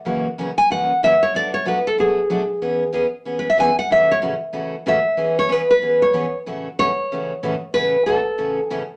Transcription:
0.05 0.26 F#2 medium
0.05 0.26 C#3 medium
0.05 0.27 E3 medium
0.05 0.26 A#3 medium
0.05 0.27 C#4 medium
0.05 0.27 F#4 medium
0.38 0.49 F#2 medium
0.38 0.49 C#3 medium
0.38 0.49 E3 medium
0.38 0.50 A#3 medium
0.38 0.50 C#4 medium
0.38 0.50 F#4 medium
0.58 0.70 G#5 medium
0.70 0.91 F#2 medium
0.70 0.91 C#3 medium
0.70 0.91 E3 medium
0.70 0.91 A#3 medium
0.70 0.91 C#4 medium
0.70 0.91 F#4 medium
0.70 1.01 F#5 medium
1.03 1.14 F#2 medium
1.03 1.14 C#3 medium
1.03 1.14 E3 medium
1.03 1.14 A#3 medium
1.03 1.14 C#4 medium
1.03 1.14 F#4 medium
1.03 1.22 E5 medium
1.23 1.34 C#5 medium
1.34 1.55 B2 medium
1.34 1.55 F#3 medium
1.34 1.55 A3 medium
1.34 1.55 D4 medium
1.34 1.55 F#4 medium
1.34 1.53 D5 medium
1.54 1.66 C#5 medium
1.65 1.77 B2 medium
1.65 1.77 F#3 medium
1.65 1.77 A3 medium
1.65 1.77 D4 medium
1.65 1.77 F#4 medium
1.65 1.86 B4 medium
1.87 1.98 A4 medium
1.98 2.19 B2 medium
1.98 2.19 F#3 medium
1.98 2.19 A3 medium
1.98 2.19 D4 medium
1.98 2.19 F#4 medium
1.98 2.91 G#4 medium
2.30 2.41 B2 medium
2.30 2.41 F#3 medium
2.30 2.41 A3 medium
2.30 2.41 D4 medium
2.30 2.41 F#4 medium
2.62 2.82 E3 medium
2.62 2.83 B3 medium
2.62 2.83 C#4 medium
2.62 2.83 G#4 medium
2.93 3.05 E3 medium
2.93 3.05 B3 medium
2.93 3.05 C#4 medium
2.93 3.05 G#4 medium
3.25 3.46 E3 medium
3.25 3.47 B3 medium
3.25 3.47 C#4 medium
3.25 3.47 G#4 medium
3.39 3.48 B4 medium
3.50 3.59 E5 medium
3.58 3.69 E3 medium
3.58 3.69 B3 medium
3.58 3.69 C#4 medium
3.58 3.70 G#4 medium
3.58 3.78 G#5 loud
3.79 3.90 F#5 loud
3.90 4.11 A2 medium
3.90 4.11 C#3 medium
3.90 4.11 E3 medium
3.90 4.11 A3 medium
3.90 4.11 C#4 medium
3.90 4.11 F#4 medium
3.90 4.10 E5 medium
4.12 4.18 C#5 loud
4.22 4.33 A2 medium
4.22 4.33 C#3 medium
4.22 4.33 E3 medium
4.22 4.33 A3 medium
4.22 4.33 C#4 medium
4.22 4.33 F#4 medium
4.53 4.74 A2 medium
4.53 4.74 C#3 medium
4.53 4.74 E3 medium
4.53 4.74 A3 medium
4.53 4.75 C#4 medium
4.53 4.75 F#4 medium
4.86 4.97 A2 medium
4.86 4.97 C#3 medium
4.86 4.98 E3 medium
4.86 4.98 A3 medium
4.86 4.97 C#4 medium
4.86 4.98 F#4 medium
4.86 5.36 E5 medium
5.17 5.38 E3 medium
5.17 5.38 B3 medium
5.17 5.39 C#4 medium
5.17 5.39 G#4 medium
5.39 5.52 C#5 loud
5.49 5.61 E3 medium
5.49 5.61 B3 medium
5.49 5.61 C#4 medium
5.49 5.61 G#4 medium
5.49 5.69 B4 medium
5.71 6.00 B4 medium
5.81 6.02 E3 medium
5.81 6.03 B3 medium
5.81 6.03 C#4 medium
5.81 6.03 G#4 medium
6.02 6.37 C#5 loud
6.13 6.25 E3 medium
6.13 6.25 B3 medium
6.13 6.25 C#4 medium
6.13 6.25 G#4 medium
6.46 6.67 A2 medium
6.46 6.67 C#3 medium
6.46 6.67 E3 medium
6.46 6.67 A3 medium
6.46 6.67 C#4 medium
6.46 6.67 F#4 medium
6.79 6.90 A2 medium
6.79 6.90 C#3 medium
6.79 6.90 E3 medium
6.79 6.90 A3 medium
6.79 6.90 C#4 medium
6.79 6.90 F#4 medium
6.79 7.73 C#5 loud
7.12 7.32 A2 medium
7.12 7.32 C#3 medium
7.12 7.32 E3 medium
7.12 7.32 A3 medium
7.12 7.32 C#4 medium
7.12 7.32 F#4 medium
7.43 7.54 A2 medium
7.43 7.54 C#3 medium
7.43 7.54 E3 medium
7.43 7.54 A3 medium
7.43 7.54 C#4 medium
7.43 7.54 F#4 medium
7.74 7.95 A2 medium
7.74 7.95 C#3 medium
7.74 7.95 E3 medium
7.74 7.95 A3 medium
7.74 7.95 C#4 medium
7.74 7.95 F#4 medium
7.74 8.07 B4 loud
8.06 8.18 A2 medium
8.06 8.18 C#3 medium
8.06 8.18 E3 medium
8.06 8.18 A3 medium
8.06 8.18 C#4 medium
8.06 8.18 F#4 medium
8.06 8.61 A4 medium
8.38 8.59 A2 soft
8.38 8.59 C#3 medium
8.38 8.59 E3 medium
8.38 8.59 A3 medium
8.38 8.59 C#4 medium
8.38 8.59 F#4 medium
8.61 8.86 G#4 medium
8.70 8.81 A2 medium
8.70 8.82 C#3 medium
8.70 8.82 E3 medium
8.70 8.82 A3 medium
8.70 8.82 C#4 medium
8.70 8.82 F#4 medium

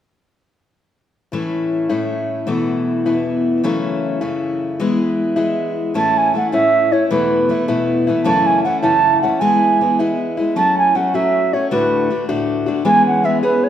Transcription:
1.32 1.90 A2 medium
1.32 1.90 E3 medium
1.32 1.89 A3 medium
1.32 1.88 C#4 medium
1.32 1.89 E4 medium
1.89 2.46 A2 soft
1.89 2.47 E3 soft
1.89 2.47 A3 soft
1.89 2.47 C#4 soft
1.89 2.47 E4 medium
2.47 3.05 E2 medium
2.47 3.05 B2 medium
2.47 3.06 E3 medium
2.47 3.05 A3 medium
2.47 3.04 B3 medium
2.47 3.05 E4 medium
3.06 3.63 E2 soft
3.06 3.64 B2 medium
3.06 3.63 E3 soft
3.06 3.63 A3 soft
3.06 3.64 B3 medium
3.06 3.64 E4 medium
3.64 4.21 F#2 medium
3.64 4.21 C#3 medium
3.64 4.22 E3 medium
3.64 4.20 A3 medium
3.64 4.20 C#4 medium
3.64 4.21 E4 medium
4.21 4.80 F#2 soft
4.21 4.80 C#3 soft
4.21 4.79 E3 medium
4.21 4.79 A3 medium
4.21 4.79 C#4 medium
4.21 4.81 E4 medium
4.80 5.37 E3 medium
4.80 5.36 G#3 medium
4.80 5.35 B3 medium
4.80 5.36 E4 medium
5.36 5.95 E3 medium
5.36 5.95 G#3 medium
5.36 5.95 B3 medium
5.36 5.95 E4 medium
5.94 6.34 A2 medium
5.94 6.33 E3 medium
5.94 6.34 A3 medium
5.94 6.34 C#4 medium
5.94 6.36 E4 medium
5.94 6.19 A5 medium
6.18 6.35 G#5 medium
6.34 6.52 E3 soft
6.34 6.52 A3 soft
6.34 6.52 C#4 medium
6.34 6.51 E4 soft
6.34 6.52 F#5 medium
6.52 6.93 A2 soft
6.52 7.10 E3 medium
6.52 6.93 A3 soft
6.52 6.92 C#4 medium
6.52 6.92 E4 medium
6.52 6.94 E5 medium
6.92 7.10 A3 soft
6.92 7.11 C#4 soft
6.92 7.10 E4 soft
6.92 7.10 C#5 medium
7.10 7.50 E2 medium
7.10 7.50 B2 medium
7.10 7.48 E3 medium
7.10 7.48 A3 medium
7.10 7.48 B3 medium
7.10 7.50 E4 medium
7.10 7.64 B4 medium
7.49 7.67 E3 soft
7.49 7.67 A3 soft
7.49 7.67 B3 medium
7.49 7.67 E4 medium
7.68 8.08 E2 medium
7.68 8.08 B2 medium
7.68 8.09 E3 medium
7.68 8.08 A3 medium
7.68 8.07 B3 medium
7.68 8.07 E4 medium
8.07 8.24 E3 soft
8.07 8.24 A3 soft
8.07 8.25 B3 soft
8.07 8.25 E4 medium
8.24 8.64 F#2 medium
8.24 8.65 C#3 medium
8.24 8.63 E3 medium
8.24 8.64 A3 medium
8.24 8.64 C#4 medium
8.24 8.65 E4 medium
8.24 8.48 A5 medium
8.46 8.63 G#5 medium
8.64 8.82 E3 soft
8.64 8.82 A3 medium
8.64 8.82 C#4 medium
8.64 8.81 E4 medium
8.64 8.81 F#5 medium
8.82 9.23 F#2 soft
8.82 9.23 C#3 soft
8.82 9.23 E3 medium
8.82 9.23 A3 medium
8.82 9.22 C#4 medium
8.82 9.21 E4 medium
8.82 9.19 A5 medium
9.22 9.40 E3 soft
9.22 9.41 A3 soft
9.22 9.41 C#4 soft
9.22 9.41 E4 soft
9.22 9.41 F#5 medium
9.40 9.80 E3 medium
9.40 9.80 G#3 medium
9.40 9.81 B3 medium
9.40 9.81 E4 medium
9.40 9.98 G#5 medium
9.81 9.99 E3 soft
9.81 9.99 G#3 soft
9.81 9.98 B3 medium
9.81 9.98 E4 soft
9.99 10.39 E3 soft
9.99 10.38 G#3 medium
9.99 10.37 B3 medium
9.99 10.36 E4 medium
10.37 10.56 G#3 soft
10.37 10.56 B3 soft
10.37 10.55 E4 medium
10.56 10.94 F#3 medium
10.56 10.95 A3 medium
10.56 10.94 C#4 medium
10.56 10.95 F#4 medium
10.56 10.76 A5 medium
10.79 10.97 G#5 medium
10.95 11.13 F#3 soft
10.95 11.13 A3 medium
10.95 11.13 C#4 soft
10.95 11.13 F#4 medium
10.95 11.16 F#5 medium
11.14 11.53 F#3 soft
11.14 11.53 A3 soft
11.14 11.53 C#4 medium
11.14 11.52 F#4 medium
11.14 11.55 E5 medium
11.53 11.71 A3 soft
11.53 11.72 C#4 soft
11.53 11.71 F#4 soft
11.53 11.71 C#5 medium
11.71 12.10 D2 medium
11.71 12.10 A2 medium
11.71 12.09 D3 medium
11.71 12.10 A3 medium
11.71 12.09 D4 medium
11.71 12.11 F#4 medium
11.71 12.25 B4 medium
12.10 12.28 D3 soft
12.10 12.28 A3 medium
12.10 12.28 D4 soft
12.10 12.27 F#4 soft
12.29 12.68 D2 medium
12.29 12.68 A2 medium
12.29 12.67 D3 medium
12.29 12.66 A3 medium
12.29 12.67 D4 medium
12.29 12.65 F#4 medium
12.66 12.84 D3 soft
12.66 12.85 A3 soft
12.66 12.85 D4 soft
12.66 12.85 F#4 soft
12.85 13.44 E3 medium
12.85 13.22 G#3 medium
12.85 13.24 B3 medium
12.85 13.25 C#4 medium
12.85 13.24 G#4 medium
12.85 13.05 G#5 medium
13.07 13.26 F#5 medium
13.24 13.42 G#3 medium
13.24 13.42 B3 medium
13.24 13.42 C#4 medium
13.24 13.41 G#4 medium
13.24 13.42 E5 medium
13.43 13.69 E3 soft
13.43 13.69 G#3 soft
13.43 13.69 B3 medium
13.43 13.69 C#4 medium
13.43 13.69 G#4 medium
13.43 13.65 B4 medium
13.64 13.69 C#5 medium

